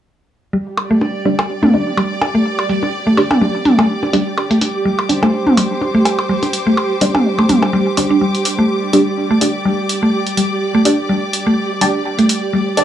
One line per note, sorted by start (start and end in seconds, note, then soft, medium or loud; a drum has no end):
0.53 0.58 G3 medium
0.53 12.84 G3 medium
0.66 12.84 G4 medium
0.66 open hi-hat soft
0.77 open hi-hat medium
0.77 percussion blips medium
0.88 0.94 A3 loud
0.88 5.26 D5 medium
1.01 percussion blips soft
1.25 1.30 G3 medium
1.25 1.33 D4 loud
1.25 1.33 G4 medium
1.25 1.33 D5 loud
1.25 open hi-hat medium
1.39 percussion blips medium
1.63 1.66 A3 loud
1.63 mid tom medium
1.63 percussion blips soft
1.73 1.85 D4 medium
1.73 1.85 G4 medium
1.73 1.85 D5 loud
1.73 open hi-hat medium
1.78 12.84 D6 medium
1.97 2.02 G3 medium
1.97 percussion blips medium
2.21 open hi-hat medium
2.21 percussion blips medium
2.21 percussion blips soft
2.35 2.38 A3 loud
2.59 open hi-hat soft
2.59 percussion blips medium
2.69 2.74 G3 medium
2.69 open hi-hat loud
2.83 percussion blips soft
3.07 3.10 A3 loud
3.17 3.25 D4 medium
3.17 3.25 G4 medium
3.17 3.25 D5 medium
3.17 open hi-hat medium
3.17 percussion blips medium
3.31 mid tom medium
3.31 percussion blips medium
3.41 3.46 G3 medium
3.41 percussion blips soft
3.65 open hi-hat medium
3.65 mid tom medium
3.79 3.82 A3 loud
3.79 percussion blips medium
4.03 percussion blips soft
4.13 4.18 G3 medium
4.13 4.21 D4 medium
4.13 4.21 G4 medium
4.13 4.21 D5 loud
4.13 open hi-hat loud
4.38 percussion blips medium
4.51 4.54 A3 loud
4.51 open hi-hat soft
4.61 open hi-hat loud
4.61 percussion blips soft
4.85 4.90 G3 medium
4.99 percussion blips medium
5.09 5.17 D4 loud
5.09 5.17 G4 medium
5.09 9.23 C5 medium
5.09 5.17 D5 loud
5.09 open hi-hat medium
5.23 5.26 A3 loud
5.23 percussion blips medium
5.23 percussion blips soft
5.47 mid tom medium
5.57 5.62 G3 medium
5.57 open hi-hat medium
5.57 percussion blips medium
5.81 percussion blips soft
5.95 5.98 A3 loud
6.05 open hi-hat loud
6.05 percussion blips medium
6.19 percussion blips medium
6.29 6.34 G3 medium
6.43 open hi-hat soft
6.43 percussion blips soft
6.53 open hi-hat medium
6.67 6.70 A3 loud
6.77 percussion blips medium
7.01 7.06 G3 medium
7.01 7.09 D4 medium
7.01 7.09 G4 medium
7.01 7.09 D5 medium
7.01 open hi-hat medium
7.01 percussion blips soft
7.15 mid tom medium
7.15 percussion blips medium
7.39 7.42 A3 loud
7.39 percussion blips medium
7.49 7.54 G3 medium
7.49 open hi-hat medium
7.49 mid tom medium
7.62 percussion blips medium
7.62 percussion blips soft
7.73 7.76 G3 loud
7.97 8.05 D4 medium
7.97 8.05 G4 medium
7.97 8.05 D5 loud
7.97 open hi-hat medium
7.97 percussion blips medium
8.11 8.16 D4 medium
8.21 8.26 G3 medium
8.35 open hi-hat soft
8.45 open hi-hat loud
8.59 8.62 A3 loud
8.77 12.84 D5 medium
8.93 8.98 G3 medium
8.93 9.01 D4 loud
8.93 9.01 G4 medium
8.93 9.01 D5 loud
8.93 open hi-hat medium
9.31 9.34 A3 loud
9.41 9.53 D4 medium
9.41 9.53 G4 medium
9.41 9.53 D5 loud
9.41 open hi-hat medium
9.65 9.70 G3 medium
9.89 open hi-hat medium
10.03 10.06 A3 loud
10.27 open hi-hat soft
10.37 10.42 G3 medium
10.37 open hi-hat loud
10.75 10.78 A3 loud
10.85 10.93 D4 medium
10.85 10.93 G4 medium
10.85 10.93 D5 loud
10.85 open hi-hat loud
11.09 11.14 G3 medium
11.33 open hi-hat medium
11.47 11.50 A3 loud
11.81 11.86 G3 medium
11.81 11.89 D4 medium
11.81 11.89 G4 medium
11.81 11.89 D5 loud
11.81 open hi-hat loud
12.19 12.22 A3 loud
12.19 open hi-hat soft
12.29 open hi-hat loud
12.53 12.58 G3 medium
12.77 12.84 D4 loud
12.77 12.84 G4 medium
12.77 12.84 D5 loud
12.77 open hi-hat loud